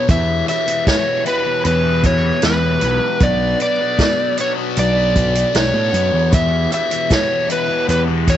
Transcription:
Already playing: E2 B3 B4
0.08 E2 B2 E3 E4 G4 E5, kick, closed hi-hat
0.47 E2 B2 E3 E5, closed hi-hat
0.67 B2 E3, closed hi-hat
0.85 E2 B2 E3 C#5, kick, snare, closed hi-hat
1.24 E2 B2 E3 B4, closed hi-hat
1.44 B2 E3
1.65 E2 B4, closed hi-hat
1.83 B2 E3
2.03 E2 B2 E3 C#5, kick, closed hi-hat
2.23 B2 E3
2.42 E2 B2 E3 B4, snare, closed hi-hat
2.61 B2 E3
2.80 B1 E2 B2 E3, closed hi-hat
3.20 B1 B2 F#3 B3 D4 D5, kick, closed hi-hat
3.60 B2 F#3 B3 D5, closed hi-hat
3.79 F#3 B3
3.98 B2 F#3 B3, kick, snare, closed hi-hat
4.37 B2 F#3 B3 C#5, closed hi-hat
4.56 F#3 B3
4.77 B1 D5, closed hi-hat
4.96 F#3 B3
5.15 B2 F#3 B3, kick, closed hi-hat
5.34 F#3 B3, closed hi-hat
5.54 B1 B2 F#3 B3, snare, closed hi-hat
5.58 C#5
5.74 A2 F#3 B3
5.93 F#2 B2 F#3 B3, closed hi-hat
6.13 E2
6.32 E2 B2 E3 E4 G4 B4 E5, kick, closed hi-hat, shaker
6.70 E2 B2 E3 E5, closed hi-hat, shaker
6.90 B2 E3, closed hi-hat
7.10 E2 B2 E3 C#5, kick, snare, closed hi-hat, shaker
7.48 E2 B2 E3 B4, closed hi-hat, shaker
7.68 B2 E3
7.89 E2 B4, closed hi-hat, shaker
8.07 B2 E3
8.26 E2 B2 E3 C#5, kick, closed hi-hat, shaker

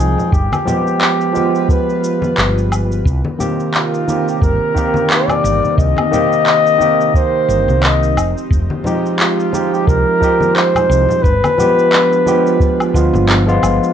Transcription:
Already playing: F3 G#3 C4 D#4 G#4 G5
0.00 C2, cabasa
0.18 low conga, cabasa
0.32 G1 F4 G4 B4, kick, cabasa
0.52 high conga, cabasa, low woodblock
0.66 F3 G#3 B3 G4, low conga, cabasa
0.87 cabasa
1.01 clap, cabasa
1.21 cabasa
1.33 F3 G#3 B3 G4, high conga, cabasa
1.55 cabasa
1.69 B4, kick, cabasa
1.90 cabasa
2.04 cabasa
2.22 high conga, cabasa
2.38 G1, clap, cabasa
2.58 cabasa
2.72 cabasa, low woodblock
2.92 cabasa
3.05 C2 C3 C4 D#4 A#4, kick, cabasa
3.25 high conga
3.38 D#3 A#3 C4 G4, low conga, cabasa
3.60 cabasa
3.74 F4, clap, cabasa
3.94 cabasa
4.07 D#3 A#3 C4 G4, high conga, cabasa
4.28 G4, cabasa
4.42 G1 A#4, kick, cabasa
4.74 D#3 A#3 C4 G4, kick, cabasa
4.94 high conga, cabasa
5.10 D5, clap, cabasa
5.28 low conga, cabasa, low woodblock
5.44 G1, cabasa
5.63 low conga, cabasa
5.78 C2 D#5, kick, cabasa
5.97 high conga, low woodblock
6.11 D#3 A#3 C4 G4, low conga, cabasa
6.33 cabasa
6.47 clap, cabasa
6.67 cabasa
6.78 D#3 A#3 C4 G4, high conga, cabasa
7.01 cabasa
7.14 C5, kick, cabasa
7.49 G1, cabasa
7.68 C2, high conga, cabasa
7.83 D#5, clap, cabasa
8.03 cabasa
8.17 F1 F3 G#3 G4, cabasa, low woodblock
8.38 cabasa
8.51 F1, kick, cabasa
8.70 high conga
8.84 F3 G#3 D#4 G4, low conga, cabasa
9.06 cabasa
9.19 F4, clap, cabasa
9.40 cabasa
9.52 F3 G#3 D#4 G4, high conga, cabasa
9.73 G4, cabasa
9.87 C2 A#4, kick, cabasa
10.20 F3 G#3 D#4 G4, kick, cabasa
10.40 high conga, cabasa
10.55 C5, clap, cabasa
10.75 low conga, cabasa, low woodblock
10.90 C2, cabasa
11.09 low conga, cabasa
11.22 G1 D4 F4 B4, kick, cabasa
11.44 high conga, cabasa, low woodblock
11.58 F3 G#3 B3 G4, low conga, cabasa
11.79 cabasa
11.93 clap, cabasa
12.13 cabasa
12.26 F3 G#3 B3 G4, high conga, cabasa
12.47 cabasa
12.60 kick, cabasa
12.80 cabasa, low woodblock
12.94 D2 F3 G#3 B3 F4, kick, cabasa
13.14 G1, high conga, cabasa
13.29 clap, cabasa
13.47 F3 G#3 B3 F4, cabasa
13.62 G1, cabasa, low woodblock
13.84 cabasa

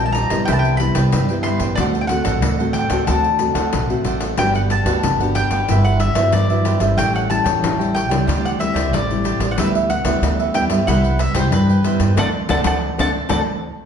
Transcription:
Already playing: A#1 A#2
0.00 G3 C4 F4 G4 C5 D#5, pandeiro
0.06 A5
0.12 D#4 G4 A#5, pandeiro
0.17 C5 D#5
0.30 A#1 G3 B3 E4 G4 C5 D#5, pandeiro
0.45 C2 C3 E4 C5 G5, pandeiro
0.50 B4 G5 A5
0.59 G5
0.65 pandeiro
0.77 G3 B3 E4 B5, muted cavaquinho stroke, pandeiro
0.95 C2 B4 C5 G5, pandeiro
1.12 G2, pandeiro
1.29 G3 B3 E4 B4 C5 G5, pandeiro
1.43 E4 B4 C5 C6, pandeiro
1.47 G5
1.60 A1 B4 C5 G5, pandeiro
1.75 D2 D3 A3 C4 D4 F#4 A4 D5, pandeiro
1.79 C5 F#5
1.94 A4 C5 F#5, pandeiro
2.01 G5
2.07 A3 C4 F#4 F#5, muted cavaquinho stroke, pandeiro
2.24 A1 A4 C5 F#5, pandeiro
2.42 D2 A2, pandeiro
2.59 A3 C4 F#4 A4 C5 F#5, pandeiro
2.73 D4 A4 C5 G5, pandeiro
2.77 F#5
2.90 D2 A3 C4 F#4 A4 C5 F#5, pandeiro
3.07 D2 D3 A3 C4 D4 F#4 A4 C5 F#5 A5, pandeiro
3.24 pandeiro
3.39 A3 C4 F#4, muted cavaquinho stroke, pandeiro
3.55 D2 A4 C5 F#5, pandeiro
3.73 B1 A2, pandeiro
3.89 A3 C4 F#4 A4 C5 F#5, pandeiro
4.04 A1 D4 A4 C5 F#5, pandeiro
4.20 A4 C5 F#5, pandeiro
4.37 G1 G3 B3 D4 F#4 G4 B4 F#5 G5, pandeiro
4.55 G4 B4 F#5, pandeiro
4.70 A5, muted cavaquinho stroke, pandeiro
4.85 D2 B3 D4 F#4 B4 F#5, pandeiro
4.89 G4
5.03 G1 D3, pandeiro
5.20 B3 D4 F#4 G4 B4 F#5, pandeiro
5.35 D4 G4 B4 F#5 G5, pandeiro
5.50 G1 G4 B4 F#5, pandeiro
5.68 G1 G2 E4 G4 B4 C5 E5, pandeiro
5.84 F#5, pandeiro
6.00 E5, muted cavaquinho stroke, pandeiro
6.15 G1 F#3 B3 E4 B4 C5 E5, pandeiro
6.32 G2 D5, pandeiro
6.50 F#3 B3 E4 B4 C5 E5, pandeiro
6.65 G4 B4 C5 E5, pandeiro
6.80 G1 G3 C#4 E4 B4 C5 E5, pandeiro
6.97 A1 A2 G4 A4 C#5 G5, pandeiro
7.14 A4 C#5 F#5 G5, pandeiro
7.29 G3 C#4 E4 A5, muted cavaquinho stroke, pandeiro
7.44 E2 A4 C#5 G5, pandeiro
7.62 A1 E3, pandeiro
7.79 G3 C#4 E4 A4 C#5 G5, pandeiro
7.94 G4 A4 C#5 G5, pandeiro
8.09 C#2 G3 C4 E4 A4 C#5 G5, pandeiro
8.27 D2 D3 D4 G4 C5 D5, pandeiro
8.45 F#5, pandeiro
8.59 G3 C4 E4 E5, muted cavaquinho stroke, pandeiro
8.74 D2 G4 C5 D5, pandeiro
8.92 A1 A2 D5, pandeiro
9.10 G3 C4 E4 G4 C5 D5, pandeiro
9.24 D4 G4 C5 D5, pandeiro
9.39 A1 G4 C5 D5, pandeiro
9.51 F#5
9.57 D2 D3 G3 B3 D4 E4 G4 B4 E5, pandeiro
9.75 G4 B4 E5, pandeiro
9.90 F#5, muted cavaquinho stroke, pandeiro
10.04 D2 G3 B3 E4 G4 B4 E5, pandeiro
10.22 D2 D3, pandeiro
10.39 G4 B4 E5, pandeiro
10.54 G3 B3 D4 E4 G4 B4 E5 G5, pandeiro
10.69 G2 B4 E5, pandeiro
10.73 G4
10.87 C2 C3 G3 E4 B4 C5 F#5, pandeiro
11.04 pandeiro
11.19 E5, muted cavaquinho stroke, pandeiro
11.34 C2 G3 E4 B4 C5 G5, pandeiro
11.38 C5
11.52 G2 B4, pandeiro
11.69 B4 C5 G5, pandeiro
11.84 G3 B3 E4 B4 C5 G5, pandeiro
11.99 G2 B4 C5 G5, pandeiro
12.16 D2 A3 C4 D4 A4 C5 D5 F#5 A5, pandeiro
12.49 D2 A3 C4 D4 A4 C5 D5 F#5 A5, pandeiro
12.63 D2 A3 C4 D4 A4 C5 D5 F#5 A5, pandeiro
12.98 D2 A3 C4 D4 A4 C5 D5 F#5 A5, pandeiro
13.29 D2 A3 C4 D4 A4 C5 D5 F#5 A5, pandeiro

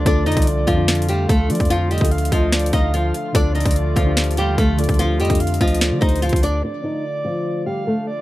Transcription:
Already playing: D3 F3 A3 F4
0.04 D2 D3 D4 F4 A4 D5, kick, closed hi-hat
0.26 F2 D#4 D#5, closed hi-hat
0.32 closed hi-hat
0.37 C2, kick, closed hi-hat
0.42 closed hi-hat
0.47 closed hi-hat
0.67 F2 F3 F4, kick, closed hi-hat
0.76 D3 D4 F4 A4
0.88 snare, closed hi-hat
0.95 closed hi-hat
1.02 closed hi-hat
1.09 G3 G4 F5, closed hi-hat
1.29 D2 A3 A4, kick, closed hi-hat
1.48 D3 F3 D4 F4 A4 D5, closed hi-hat
1.55 closed hi-hat
1.60 F2, kick, closed hi-hat
1.65 closed hi-hat
1.70 F3 F4, closed hi-hat
1.91 G3 G4 D#5, closed hi-hat
1.98 D2 D3 D4, kick, closed hi-hat
2.02 F4 A4, closed hi-hat
2.11 F5, closed hi-hat
2.18 closed hi-hat
2.25 closed hi-hat
2.32 D2 F3 F4 D#5, kick, closed hi-hat
2.52 D5, snare, closed hi-hat
2.59 closed hi-hat
2.66 closed hi-hat
2.73 D2 D#4 D#5 F5, kick, closed hi-hat
2.94 F3 F4, closed hi-hat
3.14 closed hi-hat
3.33 D2 D3 F3 A3 D4 F4 A4 D5, kick, closed hi-hat
3.55 D#4 D#5, closed hi-hat
3.60 closed hi-hat
3.65 D2, kick, closed hi-hat
3.71 closed hi-hat
3.76 closed hi-hat
3.96 D2 F3 F4, kick, closed hi-hat
4.05 D3 D4 F4 G4
4.17 snare, closed hi-hat
4.24 closed hi-hat
4.31 closed hi-hat
4.37 D#2 G3 G4 F5, closed hi-hat
4.58 D2 A3 A4, kick, closed hi-hat
4.77 D3 D4 F4 A4 D5, closed hi-hat
4.84 closed hi-hat
4.89 D2, kick, closed hi-hat
4.94 closed hi-hat
4.99 F3 F4, closed hi-hat
5.20 F2 G3 G4 D#5, closed hi-hat
5.25 D3, closed hi-hat
5.29 F2 D4 F4 A4, kick, closed hi-hat
5.35 closed hi-hat
5.40 F5, closed hi-hat
5.47 closed hi-hat
5.54 closed hi-hat
5.61 D2 F3 F4 D#5, kick, closed hi-hat
5.68 closed hi-hat
5.74 closed hi-hat
5.81 D5, snare, closed hi-hat
5.92 D3
6.01 D2 D#4 C5 D#5, kick, closed hi-hat
6.09 closed hi-hat
6.16 closed hi-hat
6.22 F3 F4, closed hi-hat
6.29 D2, kick, closed hi-hat
6.36 closed hi-hat
6.43 D4 D5, closed hi-hat
6.63 D3 F3 A3 D4 F4 D5
6.84 D#4 D#5
7.25 F3 F4
7.66 G3 G4 F5
7.87 A3 A4
8.07 D5

